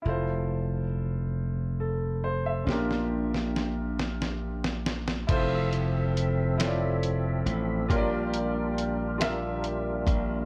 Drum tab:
CC |------------|------------|x-----------|------------|
HH |------------|------------|x-x-x-x-x-x-|x-x-x-x-x-x-|
SD |------------|oo-oo-oo-ooo|------o-----|------o-----|
BD |------------|------------|o-----------|o---------o-|